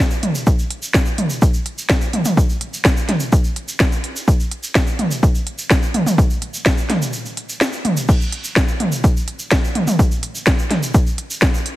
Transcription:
0.11 shaker
0.23 closed hi-hat, mid tom
0.35 shaker
0.47 kick, shaker
0.59 shaker
0.71 closed hi-hat
0.82 shaker
0.94 kick, snare, shaker
1.05 shaker
1.18 closed hi-hat, mid tom
1.30 shaker
1.42 kick, shaker
1.54 shaker
1.66 closed hi-hat
1.78 shaker
1.89 kick, snare, shaker
2.01 shaker
2.13 closed hi-hat, mid tom
2.25 mid tom, shaker
2.37 kick, shaker
2.49 shaker
2.61 closed hi-hat
2.74 shaker
2.85 kick, snare, shaker
2.97 shaker
3.09 snare, closed hi-hat, mid tom
3.20 shaker
3.32 kick, shaker
3.44 shaker
3.56 closed hi-hat
3.68 shaker
3.79 kick, snare, shaker
3.92 shaker
4.04 closed hi-hat
4.16 shaker
4.28 kick, shaker
4.40 shaker
4.51 closed hi-hat
4.63 shaker
4.75 kick, snare, shaker
4.87 shaker
4.99 closed hi-hat, mid tom
5.11 shaker
5.23 kick, shaker
5.35 shaker
5.47 closed hi-hat
5.58 shaker
5.70 kick, snare, shaker
5.83 shaker
5.94 closed hi-hat, mid tom
6.06 mid tom, shaker
6.18 kick, shaker
6.30 shaker
6.42 closed hi-hat
6.54 shaker
6.66 kick, snare, shaker
6.78 shaker
6.90 snare, closed hi-hat, mid tom
7.02 shaker
7.13 shaker
7.26 shaker
7.37 closed hi-hat
7.49 shaker
7.61 snare, shaker
7.73 shaker
7.85 closed hi-hat, mid tom
7.97 shaker
8.08 kick, crash, shaker
8.21 shaker
8.32 closed hi-hat
8.44 shaker
8.56 kick, snare, shaker
8.68 shaker
8.80 closed hi-hat, mid tom
8.92 shaker
9.04 kick, shaker
9.17 shaker
9.28 closed hi-hat
9.39 shaker
9.51 kick, snare, shaker
9.65 shaker
9.75 closed hi-hat, mid tom
9.87 mid tom, shaker
9.99 kick, shaker
10.12 shaker
10.23 closed hi-hat
10.35 shaker
10.46 kick, snare, shaker
10.59 shaker
10.71 snare, closed hi-hat, mid tom
10.83 shaker
10.94 kick, shaker
11.07 shaker
11.18 closed hi-hat
11.31 shaker
11.42 kick, snare, shaker
11.54 shaker
11.66 closed hi-hat

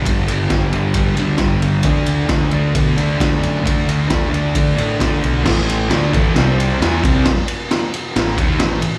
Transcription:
0.05 G1 G2 D3 G3, kick, ride
0.27 G1, ride
0.50 G1 G2 D3 G3, kick, snare, ride
0.72 G1 D3 G3, ride
0.94 G2, kick, ride
1.16 D2 G3, ride
1.20 D3
1.38 G2 D3 G3, kick, snare, ride
1.61 G1, ride
1.83 D2 D3 A3 D4, kick, ride
2.06 D2, ride
2.28 D2 D3 A3 D4, kick, snare, ride
2.51 D2 A3 D4, ride
2.75 B2, kick, ride
2.97 D2 A3 D4, ride
3.18 D2 D3 A3 D4, kick, snare, ride
3.43 F#2, ride
3.62 D2 D3 A3 D4, kick
3.67 ride
3.88 D2, ride
4.08 D2 D3 A3 D4, kick, snare, ride
4.32 D2 A3 D4, ride
4.55 D3, kick, ride
4.76 A2 A3 D4, ride
4.99 D3 A3 D4, kick, snare, ride
5.23 B1, ride
5.44 A1 A2 E3 A3, kick, snare, crash
5.69 ride
5.89 D2 D3 A3 D4, snare, ride
6.13 A1 A2 E3 A3, kick, ride
6.34 C2 C3 G3 C4, snare, ride
6.60 ride
6.80 E2 E3 B3 E4, snare, ride
7.03 C2 C3 G3 C4, kick, ride
7.25 kick, snare, ride
7.48 ride
7.71 snare, ride
7.94 ride
8.16 A1 A2 E3, snare, ride
8.37 D#2 D#3 A#3 D#4, kick, ride
8.58 A1 A2 E3, snare, ride
8.82 ride

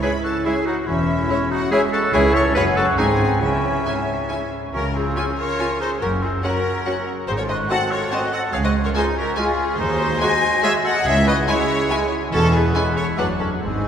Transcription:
Already playing: E4
0.02 G#3 C#4 E4 G#4 B4 C#5 E5 B5
0.24 F#4 A4 A5
0.45 G#3 C#4 E4 G#4 C#5 E5 G#5
0.66 D#4 F#4 F#5
0.87 E1 E2 C#4 E4 E5
1.30 G#3 C#4 E4 C#5 E5
1.51 D#4 F#4 F#5
1.71 G#3 C#4 E4 G#4 C#5 E5 G#5
1.92 F#4 A4 A5
2.13 C#2 C#4 E4 G#4 C#5 E5 G#5
2.34 A4 C#5 C#6
2.55 F#1 F#2 C#4 F#4 G#4 B4 C#5 F#5 B5
2.77 F#4 A4 A5
2.98 G#1 G#2 C4 D#4 G#4 G#5
3.41 C#2 C#3 C#4 E4 E5 G#5
3.85 C#4 E4 G#5
4.29 C#4 E4 G#5
4.73 C#2 C#3 C#4 F#4 A#4
4.95 C4 F4 G#4
5.16 F3 C#4 F4 G#4 G#5
5.37 F4 A#4 C#5
5.59 F3 C#4 F4 G#4 G#5
5.80 D#4 G#4 C5
6.00 F#1 F#2 C#4 F#4 A#4
6.21 C4 F4 G#4
6.43 F#3 C#4 F#4 A#4 F#5
6.86 F#3 C#4 F#4 F#5
7.28 G#1 G#2 D#4 G#4 C5
7.38 F4 A4 C#5
7.48 F#4 C5 D#5
7.69 A3 C4 F#4 A4 D#5 F#5 A5
7.90 F4 A4 C#5
8.11 A3 C4 F#4 C5 D#5 A5
8.32 A4 D#5 F#5
8.53 C#2 G#4 C#5 F5
8.64 F#4 C5 D#5
8.84 F4 A#4 C#5
8.95 G#3 D#4 F4 G#4 C5 G#5
9.16 C#4 F#4 A#4
9.36 G#3 C#4 F4 G#4 G#5
9.78 D#2 G#3 D#4 F#4 G#4 C5
10.21 G#3 F#4 C5 D#5 G#5
10.63 G#3 F#4 G#4 C#5 E5 G#5
10.84 A4 D#5 F#5
11.05 C#2 E4 G#4 C#5 E5
11.26 F#4 B4 D#5
11.47 G#3 E4 G#4 C#5 G#5
11.90 G#3 E4 G#5
12.32 E1 E2 G#3 C#4 E4 F#4 A4
12.54 B3 E4 G#4
12.75 G#3 C#4 E4 G#5
12.96 E4 A4 C#5
13.18 F#1 F#2 F#3 A3 D4 G#4 B4 F#5
13.39 C#4 F#4 A4
13.61 G#1 G#2 D#3 C4 D#4 G#4

